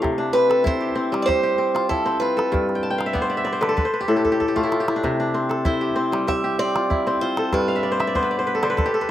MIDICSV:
0, 0, Header, 1, 4, 480
1, 0, Start_track
1, 0, Key_signature, 0, "major"
1, 0, Tempo, 625000
1, 24, Time_signature, 4, 2, 24, 8
1, 6996, End_track
2, 0, Start_track
2, 0, Title_t, "Steel-string acoustic guitar"
2, 0, Program_c, 0, 25
2, 254, Note_on_c, 0, 71, 92
2, 481, Note_off_c, 0, 71, 0
2, 513, Note_on_c, 0, 72, 93
2, 906, Note_off_c, 0, 72, 0
2, 939, Note_on_c, 0, 74, 73
2, 965, Note_on_c, 0, 72, 95
2, 986, Note_off_c, 0, 74, 0
2, 1450, Note_off_c, 0, 72, 0
2, 1453, Note_on_c, 0, 69, 84
2, 1680, Note_off_c, 0, 69, 0
2, 1688, Note_on_c, 0, 71, 86
2, 2623, Note_off_c, 0, 71, 0
2, 4346, Note_on_c, 0, 72, 73
2, 4822, Note_off_c, 0, 72, 0
2, 4825, Note_on_c, 0, 76, 101
2, 5059, Note_off_c, 0, 76, 0
2, 5062, Note_on_c, 0, 74, 92
2, 5536, Note_off_c, 0, 74, 0
2, 5540, Note_on_c, 0, 72, 85
2, 5764, Note_off_c, 0, 72, 0
2, 5789, Note_on_c, 0, 71, 80
2, 6996, Note_off_c, 0, 71, 0
2, 6996, End_track
3, 0, Start_track
3, 0, Title_t, "Kora"
3, 0, Program_c, 1, 46
3, 0, Note_on_c, 1, 57, 74
3, 0, Note_on_c, 1, 72, 63
3, 0, Note_on_c, 1, 74, 62
3, 0, Note_on_c, 1, 77, 58
3, 14, Note_on_c, 1, 48, 80
3, 138, Note_on_c, 1, 62, 60
3, 261, Note_on_c, 1, 60, 64
3, 381, Note_on_c, 1, 69, 64
3, 442, Note_off_c, 1, 72, 0
3, 491, Note_on_c, 1, 64, 82
3, 538, Note_off_c, 1, 77, 0
3, 618, Note_on_c, 1, 67, 57
3, 627, Note_off_c, 1, 74, 0
3, 730, Note_off_c, 1, 60, 0
3, 733, Note_on_c, 1, 60, 67
3, 861, Note_on_c, 1, 55, 70
3, 975, Note_off_c, 1, 67, 0
3, 978, Note_on_c, 1, 67, 71
3, 1097, Note_off_c, 1, 67, 0
3, 1101, Note_on_c, 1, 67, 62
3, 1187, Note_off_c, 1, 57, 0
3, 1211, Note_off_c, 1, 60, 0
3, 1214, Note_on_c, 1, 60, 72
3, 1341, Note_on_c, 1, 65, 63
3, 1387, Note_off_c, 1, 64, 0
3, 1393, Note_off_c, 1, 69, 0
3, 1428, Note_off_c, 1, 62, 0
3, 1453, Note_on_c, 1, 64, 64
3, 1576, Note_off_c, 1, 60, 0
3, 1579, Note_on_c, 1, 60, 74
3, 1698, Note_off_c, 1, 65, 0
3, 1701, Note_on_c, 1, 65, 63
3, 1811, Note_off_c, 1, 48, 0
3, 1819, Note_on_c, 1, 69, 61
3, 1934, Note_on_c, 1, 43, 78
3, 1979, Note_off_c, 1, 55, 0
3, 2114, Note_on_c, 1, 79, 65
3, 2173, Note_on_c, 1, 81, 68
3, 2185, Note_off_c, 1, 67, 0
3, 2228, Note_off_c, 1, 79, 0
3, 2231, Note_on_c, 1, 79, 72
3, 2291, Note_on_c, 1, 77, 72
3, 2337, Note_off_c, 1, 64, 0
3, 2351, Note_on_c, 1, 76, 68
3, 2398, Note_off_c, 1, 65, 0
3, 2406, Note_on_c, 1, 74, 65
3, 2407, Note_on_c, 1, 59, 73
3, 2453, Note_off_c, 1, 60, 0
3, 2471, Note_on_c, 1, 72, 66
3, 2528, Note_off_c, 1, 74, 0
3, 2531, Note_on_c, 1, 74, 63
3, 2585, Note_off_c, 1, 76, 0
3, 2589, Note_on_c, 1, 76, 68
3, 2635, Note_off_c, 1, 77, 0
3, 2643, Note_off_c, 1, 74, 0
3, 2646, Note_on_c, 1, 74, 69
3, 2704, Note_off_c, 1, 72, 0
3, 2707, Note_on_c, 1, 72, 71
3, 2753, Note_off_c, 1, 59, 0
3, 2771, Note_on_c, 1, 50, 68
3, 2775, Note_on_c, 1, 71, 63
3, 2829, Note_off_c, 1, 69, 0
3, 2832, Note_on_c, 1, 69, 69
3, 2840, Note_off_c, 1, 81, 0
3, 2890, Note_off_c, 1, 71, 0
3, 2893, Note_on_c, 1, 71, 66
3, 2938, Note_off_c, 1, 43, 0
3, 2938, Note_off_c, 1, 50, 0
3, 2939, Note_off_c, 1, 72, 0
3, 2946, Note_off_c, 1, 79, 0
3, 2956, Note_on_c, 1, 72, 69
3, 3019, Note_off_c, 1, 71, 0
3, 3022, Note_on_c, 1, 71, 65
3, 3076, Note_on_c, 1, 67, 65
3, 3130, Note_off_c, 1, 69, 0
3, 3133, Note_on_c, 1, 69, 66
3, 3136, Note_on_c, 1, 45, 72
3, 3195, Note_off_c, 1, 67, 0
3, 3198, Note_on_c, 1, 67, 64
3, 3258, Note_off_c, 1, 69, 0
3, 3261, Note_on_c, 1, 69, 66
3, 3314, Note_off_c, 1, 67, 0
3, 3317, Note_on_c, 1, 67, 67
3, 3376, Note_off_c, 1, 69, 0
3, 3380, Note_on_c, 1, 69, 68
3, 3383, Note_off_c, 1, 76, 0
3, 3439, Note_off_c, 1, 67, 0
3, 3442, Note_on_c, 1, 67, 67
3, 3497, Note_off_c, 1, 74, 0
3, 3500, Note_on_c, 1, 57, 74
3, 3501, Note_on_c, 1, 65, 68
3, 3558, Note_on_c, 1, 64, 68
3, 3618, Note_off_c, 1, 65, 0
3, 3622, Note_on_c, 1, 65, 63
3, 3685, Note_off_c, 1, 67, 0
3, 3688, Note_on_c, 1, 67, 65
3, 3746, Note_off_c, 1, 64, 0
3, 3749, Note_on_c, 1, 64, 65
3, 3795, Note_off_c, 1, 65, 0
3, 3810, Note_on_c, 1, 62, 64
3, 3868, Note_off_c, 1, 72, 0
3, 3871, Note_on_c, 1, 48, 80
3, 3898, Note_off_c, 1, 45, 0
3, 3917, Note_off_c, 1, 71, 0
3, 3988, Note_off_c, 1, 62, 0
3, 3991, Note_on_c, 1, 62, 58
3, 4104, Note_on_c, 1, 60, 63
3, 4216, Note_off_c, 1, 69, 0
3, 4219, Note_on_c, 1, 69, 64
3, 4335, Note_off_c, 1, 64, 0
3, 4338, Note_on_c, 1, 64, 78
3, 4459, Note_off_c, 1, 67, 0
3, 4462, Note_on_c, 1, 67, 61
3, 4572, Note_off_c, 1, 60, 0
3, 4575, Note_on_c, 1, 60, 67
3, 4702, Note_on_c, 1, 55, 70
3, 4815, Note_off_c, 1, 67, 0
3, 4818, Note_on_c, 1, 67, 67
3, 4942, Note_off_c, 1, 67, 0
3, 4945, Note_on_c, 1, 67, 64
3, 5034, Note_off_c, 1, 57, 0
3, 5058, Note_off_c, 1, 60, 0
3, 5061, Note_on_c, 1, 60, 73
3, 5189, Note_on_c, 1, 65, 58
3, 5231, Note_off_c, 1, 69, 0
3, 5235, Note_off_c, 1, 64, 0
3, 5281, Note_off_c, 1, 62, 0
3, 5299, Note_on_c, 1, 64, 64
3, 5426, Note_off_c, 1, 60, 0
3, 5429, Note_on_c, 1, 60, 78
3, 5542, Note_off_c, 1, 65, 0
3, 5545, Note_on_c, 1, 65, 58
3, 5668, Note_on_c, 1, 69, 63
3, 5669, Note_off_c, 1, 48, 0
3, 5780, Note_on_c, 1, 43, 78
3, 5821, Note_off_c, 1, 55, 0
3, 5899, Note_on_c, 1, 77, 64
3, 5945, Note_off_c, 1, 64, 0
3, 5958, Note_on_c, 1, 76, 64
3, 6004, Note_off_c, 1, 65, 0
3, 6014, Note_on_c, 1, 74, 72
3, 6030, Note_off_c, 1, 67, 0
3, 6079, Note_on_c, 1, 72, 68
3, 6138, Note_off_c, 1, 76, 0
3, 6141, Note_on_c, 1, 76, 69
3, 6187, Note_off_c, 1, 77, 0
3, 6197, Note_off_c, 1, 74, 0
3, 6200, Note_on_c, 1, 74, 73
3, 6259, Note_on_c, 1, 59, 77
3, 6261, Note_off_c, 1, 72, 0
3, 6264, Note_on_c, 1, 72, 66
3, 6306, Note_off_c, 1, 60, 0
3, 6318, Note_on_c, 1, 71, 68
3, 6378, Note_off_c, 1, 74, 0
3, 6381, Note_on_c, 1, 74, 66
3, 6438, Note_off_c, 1, 72, 0
3, 6441, Note_on_c, 1, 72, 63
3, 6487, Note_off_c, 1, 71, 0
3, 6503, Note_on_c, 1, 71, 70
3, 6561, Note_off_c, 1, 69, 0
3, 6564, Note_on_c, 1, 69, 68
3, 6623, Note_off_c, 1, 72, 0
3, 6624, Note_on_c, 1, 50, 74
3, 6626, Note_on_c, 1, 72, 67
3, 6672, Note_off_c, 1, 59, 0
3, 6672, Note_off_c, 1, 71, 0
3, 6680, Note_on_c, 1, 71, 68
3, 6732, Note_off_c, 1, 69, 0
3, 6735, Note_on_c, 1, 69, 72
3, 6783, Note_off_c, 1, 43, 0
3, 6783, Note_off_c, 1, 50, 0
3, 6802, Note_on_c, 1, 67, 70
3, 6863, Note_off_c, 1, 69, 0
3, 6866, Note_on_c, 1, 69, 71
3, 6918, Note_off_c, 1, 71, 0
3, 6921, Note_on_c, 1, 71, 70
3, 6935, Note_off_c, 1, 76, 0
3, 6967, Note_off_c, 1, 72, 0
3, 6996, Note_off_c, 1, 67, 0
3, 6996, Note_off_c, 1, 69, 0
3, 6996, Note_off_c, 1, 71, 0
3, 6996, Note_off_c, 1, 74, 0
3, 6996, End_track
4, 0, Start_track
4, 0, Title_t, "Calabash"
4, 33, Note_on_c, 9, 36, 70
4, 33, Note_on_c, 9, 38, 22
4, 109, Note_off_c, 9, 36, 0
4, 109, Note_off_c, 9, 38, 0
4, 390, Note_on_c, 9, 38, 53
4, 467, Note_off_c, 9, 38, 0
4, 509, Note_on_c, 9, 36, 66
4, 586, Note_off_c, 9, 36, 0
4, 876, Note_on_c, 9, 38, 51
4, 952, Note_off_c, 9, 38, 0
4, 989, Note_on_c, 9, 36, 67
4, 989, Note_on_c, 9, 38, 21
4, 1066, Note_off_c, 9, 36, 0
4, 1066, Note_off_c, 9, 38, 0
4, 1351, Note_on_c, 9, 38, 49
4, 1428, Note_off_c, 9, 38, 0
4, 1466, Note_on_c, 9, 36, 60
4, 1543, Note_off_c, 9, 36, 0
4, 1593, Note_on_c, 9, 38, 20
4, 1669, Note_off_c, 9, 38, 0
4, 1835, Note_on_c, 9, 38, 46
4, 1912, Note_off_c, 9, 38, 0
4, 1951, Note_on_c, 9, 36, 60
4, 2028, Note_off_c, 9, 36, 0
4, 2067, Note_on_c, 9, 38, 20
4, 2144, Note_off_c, 9, 38, 0
4, 2309, Note_on_c, 9, 38, 49
4, 2385, Note_off_c, 9, 38, 0
4, 2421, Note_on_c, 9, 36, 58
4, 2498, Note_off_c, 9, 36, 0
4, 2664, Note_on_c, 9, 38, 20
4, 2740, Note_off_c, 9, 38, 0
4, 2785, Note_on_c, 9, 38, 49
4, 2862, Note_off_c, 9, 38, 0
4, 2902, Note_on_c, 9, 36, 61
4, 2978, Note_off_c, 9, 36, 0
4, 3265, Note_on_c, 9, 36, 37
4, 3342, Note_off_c, 9, 36, 0
4, 3388, Note_on_c, 9, 36, 37
4, 3465, Note_off_c, 9, 36, 0
4, 3508, Note_on_c, 9, 36, 43
4, 3584, Note_off_c, 9, 36, 0
4, 3626, Note_on_c, 9, 38, 45
4, 3703, Note_off_c, 9, 38, 0
4, 3750, Note_on_c, 9, 38, 51
4, 3826, Note_off_c, 9, 38, 0
4, 3867, Note_on_c, 9, 36, 56
4, 3867, Note_on_c, 9, 38, 20
4, 3944, Note_off_c, 9, 36, 0
4, 3944, Note_off_c, 9, 38, 0
4, 4232, Note_on_c, 9, 38, 44
4, 4308, Note_off_c, 9, 38, 0
4, 4342, Note_on_c, 9, 36, 60
4, 4419, Note_off_c, 9, 36, 0
4, 4711, Note_on_c, 9, 38, 51
4, 4787, Note_off_c, 9, 38, 0
4, 4828, Note_on_c, 9, 36, 63
4, 4828, Note_on_c, 9, 38, 20
4, 4905, Note_off_c, 9, 36, 0
4, 4905, Note_off_c, 9, 38, 0
4, 5189, Note_on_c, 9, 38, 49
4, 5266, Note_off_c, 9, 38, 0
4, 5308, Note_on_c, 9, 36, 58
4, 5385, Note_off_c, 9, 36, 0
4, 5426, Note_on_c, 9, 38, 20
4, 5503, Note_off_c, 9, 38, 0
4, 5662, Note_on_c, 9, 38, 53
4, 5739, Note_off_c, 9, 38, 0
4, 5780, Note_on_c, 9, 36, 65
4, 5780, Note_on_c, 9, 38, 21
4, 5856, Note_off_c, 9, 36, 0
4, 5856, Note_off_c, 9, 38, 0
4, 6147, Note_on_c, 9, 38, 51
4, 6224, Note_off_c, 9, 38, 0
4, 6263, Note_on_c, 9, 36, 61
4, 6340, Note_off_c, 9, 36, 0
4, 6628, Note_on_c, 9, 38, 50
4, 6704, Note_off_c, 9, 38, 0
4, 6746, Note_on_c, 9, 36, 67
4, 6746, Note_on_c, 9, 38, 21
4, 6823, Note_off_c, 9, 36, 0
4, 6823, Note_off_c, 9, 38, 0
4, 6996, End_track
0, 0, End_of_file